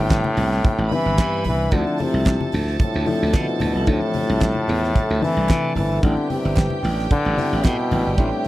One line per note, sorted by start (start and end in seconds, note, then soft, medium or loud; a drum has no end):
0.00 0.20 G1 loud
0.00 0.95 A2 loud
0.00 0.90 G3 medium
0.00 0.90 B3 medium
0.00 0.91 C4 medium
0.00 0.91 D4 medium
0.00 0.91 E4 medium
0.00 0.87 G4 medium
0.00 0.88 G5 loud
0.09 kick loud
0.09 snare loud
0.09 clap medium
0.09 clap loud
0.09 closed hi-hat medium
0.24 muted conga soft
0.24 high conga medium
0.37 0.59 C2 loud
0.37 open hi-hat medium
0.37 low conga medium
0.52 snare soft
0.65 kick loud
0.65 closed hi-hat medium
0.65 muted conga soft
0.65 high conga medium
0.65 low conga medium
0.78 0.89 A1 medium
0.78 muted conga soft
0.90 1.46 E3 loud
0.90 1.47 G3 medium
0.90 1.47 B3 medium
0.90 1.47 C4 medium
0.90 1.47 D4 medium
0.90 1.47 E4 medium
0.90 1.71 B4 medium
0.90 1.71 B5 loud
0.90 open hi-hat medium
0.90 high conga medium
1.06 1.16 G1 medium
1.18 1.47 G2 medium
1.18 kick loud
1.18 snare loud
1.18 clap loud
1.18 closed hi-hat medium
1.34 muted conga soft
1.44 1.67 C2 medium
1.44 1.76 E3 loud
1.44 open hi-hat medium
1.44 high conga medium
1.44 low conga medium
1.71 1.84 D2 loud
1.71 5.99 C3 medium
1.71 5.99 D3 medium
1.71 2.04 D3 loud
1.71 2.47 F3 medium
1.71 2.47 A3 medium
1.71 2.47 C4 medium
1.71 2.47 D4 medium
1.71 1.80 D#4 medium
1.71 5.99 E4 medium
1.71 5.99 A4 medium
1.71 5.99 A5 medium
1.71 kick loud
1.71 closed hi-hat medium
1.80 2.51 E4 medium
1.87 muted conga soft
1.98 open hi-hat medium
1.98 high conga medium
2.02 2.55 C3 loud
2.14 2.36 C2 medium
2.25 kick loud
2.25 snare loud
2.25 clap medium
2.25 closed hi-hat medium
2.28 clap loud
2.41 muted conga soft
2.41 high conga medium
2.52 2.76 D2 loud
2.52 open hi-hat medium
2.52 low conga medium
2.67 snare soft
2.79 3.38 A2 medium
2.79 kick loud
2.79 closed hi-hat medium
2.79 muted conga soft
2.79 high conga medium
2.79 low conga medium
2.94 3.05 D2 medium
2.94 muted conga soft
3.06 3.62 F3 medium
3.06 3.62 A3 medium
3.06 3.62 C4 medium
3.06 3.62 D4 medium
3.06 3.63 E4 medium
3.06 open hi-hat medium
3.06 high conga medium
3.22 3.32 D2 medium
3.33 3.62 B2 medium
3.33 3.46 D3 medium
3.33 kick loud
3.33 snare loud
3.33 clap loud
3.33 closed hi-hat medium
3.49 muted conga soft
3.60 3.73 D2 loud
3.60 3.91 B2 loud
3.60 open hi-hat medium
3.60 high conga medium
3.60 low conga medium
3.75 3.85 C2 medium
3.87 3.99 D2 loud
3.87 5.25 A2 loud
3.87 3.94 E3 medium
3.87 4.62 A3 medium
3.87 4.62 C4 medium
3.87 4.62 D4 medium
3.87 4.62 E4 medium
3.87 kick loud
3.87 closed hi-hat medium
3.87 muted conga soft
3.93 4.65 F3 medium
4.02 muted conga soft
4.14 open hi-hat medium
4.14 high conga medium
4.29 4.51 C2 loud
4.40 kick loud
4.40 snare loud
4.40 clap medium
4.40 closed hi-hat medium
4.40 muted conga soft
4.43 clap loud
4.55 high conga medium
4.68 4.91 E2 loud
4.68 open hi-hat medium
4.68 low conga medium
4.84 snare soft
4.95 kick loud
4.95 closed hi-hat medium
4.95 muted conga soft
4.95 high conga medium
4.95 low conga medium
5.10 5.20 D2 medium
5.10 muted conga soft
5.21 5.77 E3 medium
5.21 5.77 E3 loud
5.21 5.77 A3 medium
5.21 5.78 C4 medium
5.21 5.78 D4 medium
5.21 5.78 E4 medium
5.21 open hi-hat medium
5.21 high conga medium
5.37 5.47 C2 medium
5.49 5.72 C3 medium
5.49 kick loud
5.49 snare loud
5.49 clap loud
5.49 closed hi-hat medium
5.51 clap loud
5.64 muted conga soft
5.76 5.98 G1 loud
5.76 6.06 E3 loud
5.76 open hi-hat medium
5.76 high conga medium
5.76 low conga medium
6.02 6.15 A1 loud
6.02 8.48 D3 medium
6.02 6.30 D3 loud
6.02 8.48 G3 medium
6.02 6.77 G3 medium
6.02 6.78 B3 medium
6.02 6.78 C4 medium
6.02 8.48 D4 medium
6.02 6.78 D4 medium
6.02 6.78 E4 medium
6.02 8.48 G4 medium
6.02 8.16 B4 medium
6.02 8.48 G5 loud
6.02 kick loud
6.02 closed hi-hat medium
6.02 muted conga soft
6.17 muted conga soft
6.30 6.80 C3 medium
6.30 open hi-hat medium
6.30 high conga medium
6.45 6.67 G1 loud
6.56 kick loud
6.56 snare loud
6.56 clap medium
6.56 closed hi-hat medium
6.59 clap loud
6.70 high conga medium
6.83 7.06 A1 loud
6.83 open hi-hat medium
6.83 low conga medium
6.99 snare soft
7.11 7.67 D3 loud
7.11 kick loud
7.11 closed hi-hat medium
7.11 high conga medium
7.11 low conga medium
7.25 7.36 A1 medium
7.25 muted conga soft
7.37 7.93 G3 medium
7.37 7.93 B3 medium
7.37 7.93 C4 medium
7.37 7.93 D4 medium
7.37 7.93 E4 loud
7.37 open hi-hat medium
7.37 high conga medium
7.53 7.62 A1 medium
7.64 7.76 A2 loud
7.64 8.18 B2 loud
7.64 kick loud
7.64 snare loud
7.64 clap loud
7.64 closed hi-hat medium
7.64 muted conga soft
7.66 clap loud
7.80 muted conga soft
7.91 8.03 A1 loud
7.91 open hi-hat medium
7.91 high conga medium
7.91 low conga medium
8.07 8.18 G1 medium
8.18 8.30 A1 loud
8.18 8.48 A2 medium
8.18 8.48 G3 medium
8.18 8.48 A3 medium
8.18 8.48 B3 medium
8.18 8.48 C4 medium
8.18 8.48 D4 medium
8.18 8.48 E4 medium
8.18 kick loud
8.18 closed hi-hat medium
8.18 muted conga soft
8.33 muted conga soft
8.45 open hi-hat medium